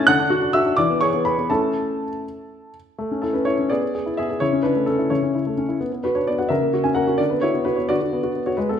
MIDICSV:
0, 0, Header, 1, 2, 480
1, 0, Start_track
1, 0, Key_signature, 3, "major"
1, 0, Tempo, 470219
1, 66, Time_signature, 6, 3, 24, 8
1, 1027, Tempo, 493421
1, 2947, Tempo, 477707
1, 4387, Tempo, 463320
1, 8928, End_track
2, 0, Start_track
2, 0, Title_t, "Grand piano"
2, 0, Program_c, 0, 0
2, 0, Control_c, 0, 64, 127
2, 68, Note_on_c, 0, 90, 98
2, 76, Note_on_c, 0, 50, 77
2, 80, Control_c, 0, 64, 0
2, 82, Note_on_c, 0, 78, 83
2, 199, Note_on_c, 0, 62, 63
2, 280, Control_c, 0, 64, 127
2, 309, Note_on_c, 0, 66, 64
2, 381, Note_off_c, 0, 62, 0
2, 428, Note_on_c, 0, 62, 57
2, 496, Note_off_c, 0, 66, 0
2, 516, Note_off_c, 0, 78, 0
2, 542, Note_off_c, 0, 90, 0
2, 544, Note_on_c, 0, 88, 85
2, 553, Note_on_c, 0, 76, 68
2, 555, Note_on_c, 0, 66, 60
2, 616, Note_off_c, 0, 62, 0
2, 674, Note_on_c, 0, 62, 50
2, 741, Note_off_c, 0, 66, 0
2, 766, Note_off_c, 0, 50, 0
2, 772, Note_off_c, 0, 76, 0
2, 781, Note_on_c, 0, 86, 90
2, 784, Note_off_c, 0, 88, 0
2, 789, Note_off_c, 0, 62, 0
2, 791, Control_c, 0, 64, 0
2, 796, Note_on_c, 0, 52, 67
2, 798, Note_on_c, 0, 74, 67
2, 921, Note_on_c, 0, 59, 49
2, 1014, Control_c, 0, 64, 127
2, 1018, Note_off_c, 0, 74, 0
2, 1026, Note_off_c, 0, 86, 0
2, 1027, Note_on_c, 0, 85, 83
2, 1040, Note_on_c, 0, 73, 61
2, 1042, Note_on_c, 0, 68, 51
2, 1105, Note_off_c, 0, 59, 0
2, 1155, Note_on_c, 0, 59, 50
2, 1222, Note_off_c, 0, 68, 0
2, 1253, Note_off_c, 0, 73, 0
2, 1263, Note_off_c, 0, 85, 0
2, 1264, Note_on_c, 0, 83, 78
2, 1275, Note_on_c, 0, 68, 49
2, 1276, Note_on_c, 0, 71, 54
2, 1339, Note_off_c, 0, 59, 0
2, 1394, Note_on_c, 0, 59, 46
2, 1460, Note_off_c, 0, 68, 0
2, 1488, Note_off_c, 0, 52, 0
2, 1493, Note_off_c, 0, 71, 0
2, 1503, Note_off_c, 0, 83, 0
2, 1505, Note_on_c, 0, 81, 68
2, 1508, Note_off_c, 0, 59, 0
2, 1512, Note_on_c, 0, 64, 44
2, 1513, Note_on_c, 0, 69, 54
2, 1514, Note_on_c, 0, 57, 52
2, 1514, Note_on_c, 0, 61, 42
2, 1515, Control_c, 0, 64, 0
2, 1709, Control_c, 0, 64, 127
2, 2012, Note_off_c, 0, 57, 0
2, 2083, Note_off_c, 0, 64, 0
2, 2084, Note_off_c, 0, 61, 0
2, 2232, Control_c, 0, 64, 0
2, 2672, Note_off_c, 0, 69, 0
2, 2707, Note_off_c, 0, 81, 0
2, 2952, Note_on_c, 0, 57, 51
2, 3082, Note_on_c, 0, 61, 41
2, 3182, Control_c, 0, 64, 127
2, 3186, Note_on_c, 0, 69, 59
2, 3197, Note_on_c, 0, 64, 44
2, 3269, Note_off_c, 0, 61, 0
2, 3302, Note_on_c, 0, 71, 55
2, 3309, Note_off_c, 0, 69, 0
2, 3314, Note_on_c, 0, 61, 42
2, 3387, Note_off_c, 0, 64, 0
2, 3421, Note_on_c, 0, 73, 73
2, 3427, Note_off_c, 0, 71, 0
2, 3437, Note_on_c, 0, 64, 49
2, 3505, Note_off_c, 0, 61, 0
2, 3562, Note_on_c, 0, 61, 38
2, 3653, Note_off_c, 0, 57, 0
2, 3658, Note_off_c, 0, 64, 0
2, 3666, Note_off_c, 0, 73, 0
2, 3666, Note_on_c, 0, 74, 72
2, 3677, Note_off_c, 0, 61, 0
2, 3677, Note_on_c, 0, 68, 54
2, 3679, Control_c, 0, 64, 0
2, 3679, Note_on_c, 0, 59, 52
2, 3782, Note_off_c, 0, 59, 0
2, 3797, Note_on_c, 0, 59, 37
2, 3902, Control_c, 0, 64, 127
2, 3906, Note_off_c, 0, 68, 0
2, 3921, Note_on_c, 0, 68, 45
2, 3985, Note_off_c, 0, 59, 0
2, 4033, Note_on_c, 0, 64, 40
2, 4106, Note_off_c, 0, 68, 0
2, 4146, Note_off_c, 0, 74, 0
2, 4147, Note_on_c, 0, 76, 70
2, 4162, Note_on_c, 0, 68, 56
2, 4165, Note_on_c, 0, 59, 38
2, 4222, Note_off_c, 0, 64, 0
2, 4259, Note_off_c, 0, 68, 0
2, 4274, Note_on_c, 0, 68, 44
2, 4347, Note_off_c, 0, 59, 0
2, 4376, Note_on_c, 0, 73, 74
2, 4385, Note_off_c, 0, 76, 0
2, 4387, Note_on_c, 0, 49, 47
2, 4389, Note_off_c, 0, 68, 0
2, 4390, Note_on_c, 0, 64, 55
2, 4395, Control_c, 0, 64, 0
2, 4509, Note_on_c, 0, 61, 40
2, 4573, Control_c, 0, 64, 127
2, 4606, Note_off_c, 0, 64, 0
2, 4609, Note_on_c, 0, 71, 71
2, 4621, Note_on_c, 0, 64, 40
2, 4622, Note_off_c, 0, 73, 0
2, 4623, Note_on_c, 0, 62, 50
2, 4700, Note_off_c, 0, 61, 0
2, 4743, Note_on_c, 0, 57, 44
2, 4817, Note_off_c, 0, 64, 0
2, 4848, Note_off_c, 0, 62, 0
2, 4853, Note_on_c, 0, 69, 60
2, 4858, Note_off_c, 0, 71, 0
2, 4872, Note_on_c, 0, 61, 44
2, 4938, Note_off_c, 0, 57, 0
2, 4983, Note_on_c, 0, 64, 39
2, 5091, Note_off_c, 0, 64, 0
2, 5094, Note_off_c, 0, 49, 0
2, 5095, Note_off_c, 0, 61, 0
2, 5099, Note_on_c, 0, 73, 63
2, 5102, Note_off_c, 0, 69, 0
2, 5107, Note_on_c, 0, 64, 51
2, 5110, Note_on_c, 0, 49, 43
2, 5120, Control_c, 0, 64, 0
2, 5230, Note_on_c, 0, 61, 38
2, 5338, Note_off_c, 0, 64, 0
2, 5354, Note_on_c, 0, 64, 43
2, 5424, Note_off_c, 0, 61, 0
2, 5477, Note_on_c, 0, 57, 37
2, 5546, Note_off_c, 0, 64, 0
2, 5591, Note_on_c, 0, 61, 40
2, 5668, Note_off_c, 0, 57, 0
2, 5706, Note_on_c, 0, 64, 41
2, 5785, Note_off_c, 0, 61, 0
2, 5813, Note_off_c, 0, 49, 0
2, 5830, Note_off_c, 0, 73, 0
2, 5831, Note_off_c, 0, 64, 0
2, 5831, Note_on_c, 0, 59, 47
2, 5938, Note_off_c, 0, 59, 0
2, 5954, Note_on_c, 0, 59, 40
2, 6046, Control_c, 0, 64, 127
2, 6069, Note_on_c, 0, 71, 66
2, 6081, Note_on_c, 0, 66, 43
2, 6146, Note_off_c, 0, 59, 0
2, 6186, Note_on_c, 0, 73, 52
2, 6192, Note_off_c, 0, 71, 0
2, 6195, Note_on_c, 0, 62, 41
2, 6269, Note_off_c, 0, 66, 0
2, 6309, Note_off_c, 0, 73, 0
2, 6316, Note_on_c, 0, 74, 66
2, 6329, Note_on_c, 0, 59, 44
2, 6386, Note_off_c, 0, 62, 0
2, 6431, Note_on_c, 0, 78, 50
2, 6434, Note_off_c, 0, 74, 0
2, 6440, Note_on_c, 0, 66, 36
2, 6513, Note_off_c, 0, 59, 0
2, 6535, Note_on_c, 0, 76, 68
2, 6551, Note_on_c, 0, 49, 57
2, 6552, Note_off_c, 0, 78, 0
2, 6552, Note_on_c, 0, 70, 55
2, 6557, Note_off_c, 0, 66, 0
2, 6561, Control_c, 0, 64, 0
2, 6669, Note_on_c, 0, 58, 42
2, 6770, Control_c, 0, 64, 127
2, 6793, Note_on_c, 0, 66, 46
2, 6866, Note_off_c, 0, 58, 0
2, 6891, Note_off_c, 0, 70, 0
2, 6899, Note_on_c, 0, 80, 59
2, 6908, Note_off_c, 0, 76, 0
2, 6909, Note_on_c, 0, 61, 42
2, 6989, Note_off_c, 0, 66, 0
2, 7012, Note_on_c, 0, 78, 67
2, 7021, Note_on_c, 0, 58, 42
2, 7022, Note_on_c, 0, 70, 52
2, 7030, Note_off_c, 0, 80, 0
2, 7108, Note_off_c, 0, 61, 0
2, 7145, Note_on_c, 0, 66, 42
2, 7224, Note_off_c, 0, 58, 0
2, 7251, Note_on_c, 0, 74, 72
2, 7255, Note_off_c, 0, 70, 0
2, 7259, Note_off_c, 0, 49, 0
2, 7265, Note_on_c, 0, 50, 56
2, 7268, Note_off_c, 0, 78, 0
2, 7274, Note_off_c, 0, 66, 0
2, 7289, Control_c, 0, 64, 0
2, 7376, Note_on_c, 0, 71, 55
2, 7388, Note_off_c, 0, 74, 0
2, 7389, Note_on_c, 0, 59, 40
2, 7460, Control_c, 0, 64, 127
2, 7497, Note_on_c, 0, 73, 73
2, 7508, Note_on_c, 0, 66, 42
2, 7511, Note_off_c, 0, 71, 0
2, 7512, Note_on_c, 0, 64, 56
2, 7590, Note_off_c, 0, 59, 0
2, 7634, Note_on_c, 0, 59, 44
2, 7710, Note_off_c, 0, 66, 0
2, 7738, Note_on_c, 0, 71, 69
2, 7743, Note_off_c, 0, 64, 0
2, 7749, Note_on_c, 0, 66, 44
2, 7752, Note_off_c, 0, 73, 0
2, 7832, Note_off_c, 0, 59, 0
2, 7859, Note_on_c, 0, 73, 51
2, 7872, Note_off_c, 0, 71, 0
2, 7874, Note_on_c, 0, 59, 45
2, 7949, Note_off_c, 0, 66, 0
2, 7985, Note_off_c, 0, 50, 0
2, 7985, Note_on_c, 0, 74, 82
2, 7991, Note_off_c, 0, 73, 0
2, 7999, Note_on_c, 0, 66, 59
2, 8001, Note_on_c, 0, 50, 47
2, 8017, Control_c, 0, 64, 0
2, 8070, Note_off_c, 0, 59, 0
2, 8099, Note_off_c, 0, 66, 0
2, 8236, Note_on_c, 0, 59, 50
2, 8346, Note_on_c, 0, 66, 47
2, 8426, Note_off_c, 0, 59, 0
2, 8476, Note_on_c, 0, 59, 40
2, 8539, Note_off_c, 0, 66, 0
2, 8582, Note_on_c, 0, 73, 54
2, 8583, Note_off_c, 0, 74, 0
2, 8590, Note_on_c, 0, 66, 49
2, 8663, Note_off_c, 0, 59, 0
2, 8686, Note_off_c, 0, 50, 0
2, 8693, Note_on_c, 0, 71, 58
2, 8703, Note_on_c, 0, 56, 55
2, 8704, Note_off_c, 0, 73, 0
2, 8708, Note_off_c, 0, 66, 0
2, 8818, Note_off_c, 0, 71, 0
2, 8820, Note_on_c, 0, 69, 55
2, 8833, Note_on_c, 0, 59, 49
2, 8888, Control_c, 0, 64, 127
2, 8928, Note_off_c, 0, 56, 0
2, 8928, Note_off_c, 0, 59, 0
2, 8928, Note_off_c, 0, 69, 0
2, 8928, End_track
0, 0, End_of_file